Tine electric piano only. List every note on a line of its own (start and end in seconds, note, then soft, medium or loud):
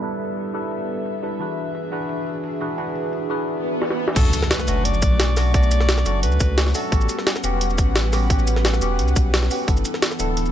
0.00 0.54 G3 medium
0.00 0.02 D4 medium
0.00 0.52 D4 medium
0.00 0.02 E4 medium
0.00 0.52 E4 medium
0.00 0.03 A4 medium
0.00 0.53 A4 medium
0.00 0.04 B4 loud
0.00 0.53 B4 medium
0.54 0.64 G3 medium
0.54 0.64 D4 medium
0.54 0.64 E4 medium
0.54 0.65 A4 medium
0.54 0.65 B4 medium
1.22 1.38 G3 medium
1.22 1.38 D4 medium
1.22 1.38 E4 medium
1.22 1.38 A4 medium
1.22 1.39 B4 medium
1.39 1.89 E3 medium
1.39 1.90 D4 medium
1.39 1.90 F#4 medium
1.39 1.90 G#4 medium
1.39 1.91 B4 medium
1.91 2.02 E3 medium
1.91 2.02 D4 medium
1.91 2.02 F#4 medium
1.91 2.03 G#4 medium
1.91 2.03 B4 medium
2.60 2.76 E3 medium
2.60 2.76 D4 medium
2.60 2.76 F#4 medium
2.60 2.77 G#4 medium
2.60 2.77 B4 medium
2.77 3.27 E3 medium
2.77 3.28 D4 medium
2.77 3.28 F#4 medium
2.77 3.28 G#4 medium
2.77 3.29 B4 medium
3.29 3.40 E3 medium
3.29 3.40 D4 medium
3.29 3.40 F#4 medium
3.29 3.41 G#4 medium
3.29 3.41 B4 loud
4.15 4.65 A3 medium
4.15 4.66 C#4 medium
4.15 4.66 D4 medium
4.15 4.67 F#4 medium
4.67 4.78 A3 medium
4.67 4.78 C#4 medium
4.67 4.78 D4 medium
4.67 4.79 F#4 loud
5.36 5.52 A3 medium
5.36 5.52 C#4 medium
5.36 5.52 D4 medium
5.36 5.53 F#4 medium
5.53 6.03 A3 medium
5.53 6.04 B3 medium
5.53 6.04 D4 medium
5.53 6.05 F#4 medium
6.05 6.16 A3 medium
6.05 6.16 C#4 medium
6.05 6.16 D4 medium
6.05 6.17 F#4 loud
6.74 6.90 A3 medium
6.74 6.90 C#4 medium
6.74 6.90 D4 medium
6.74 6.90 F#4 loud
6.91 7.41 B3 medium
6.91 7.42 C#4 medium
6.91 7.42 F#4 medium
6.91 7.43 G4 medium
7.43 7.54 B3 medium
7.43 7.54 C#4 medium
7.43 7.54 F#4 medium
7.43 7.55 G4 loud
8.12 8.28 B3 medium
8.12 8.28 C#4 medium
8.12 8.28 F#4 medium
8.12 8.28 G4 loud
8.29 8.79 B3 medium
8.29 8.80 C#4 medium
8.29 8.80 F#4 medium
8.29 8.81 G4 medium
8.81 8.92 B3 medium
8.81 8.92 C#4 medium
8.81 8.92 F#4 medium
8.81 8.93 G4 loud
9.50 9.66 B3 medium
9.50 9.66 C#4 medium
9.50 9.66 F#4 medium
9.50 9.67 G4 medium
9.67 10.17 B3 medium
9.67 10.18 D4 medium
9.67 10.18 E4 medium
9.67 10.19 A4 medium
10.19 10.30 B3 medium
10.19 10.30 D4 medium
10.19 10.30 E4 medium
10.19 10.30 A4 loud